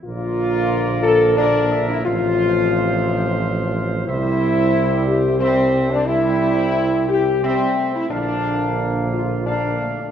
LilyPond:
<<
  \new Staff \with { instrumentName = "Trumpet section" } { \time 3/4 \key c \mixolydian \tempo 4 = 89 << { d''2 d''8 e''8 | f''2. | e''2 e''4 | e''2 e''4 |
f''2 f''4 | } \\ { bes'2 bes'4 | c''2. | c''2 c''4 | c''2 c''4 |
f''2 f''4 | } >> }
  \new Staff \with { instrumentName = "French horn section" } { \time 3/4 \key c \mixolydian f'4. a'8 d'8. e'16 | f'2~ f'8 r8 | e'4. g'8 c'8. d'16 | e'4. g'8 c'8. e'16 |
d'4. f'8 d'8. d'16 | }
  \new Staff \with { instrumentName = "Trombone section" } { \clef bass \time 3/4 \key c \mixolydian << { bes2 bes4 | f2. | g2 g4 | g2 g8 a8 |
bes2 bes8 a8 | } \\ { d2 d4 | c2. | c2 c4 | c2 c4 |
d2 d4 | } >> }
  \new Staff \with { instrumentName = "Tuba" } { \clef bass \time 3/4 \key c \mixolydian bes,,2. | a,,2. | c,2.~ | c,2~ c,8 r8 |
bes,,2. | }
>>